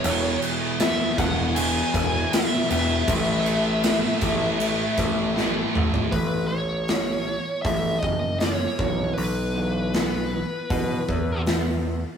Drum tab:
CC |x-x-x-x-x-x-x-x-|x-x-x-x-x-x-----|----------------|----------------|
HH |----------------|----------------|o---o---o---o---|o---o---o---o---|
SD |----o-------o---|----o-------o---|----o-------o---|----o-------o---|
T2 |----------------|--------------o-|----------------|----------------|
FT |----------------|---------------o|----------------|----------------|
BD |------o---o-----|o-----o---o-----|o-------o-o---o-|--------o-o-----|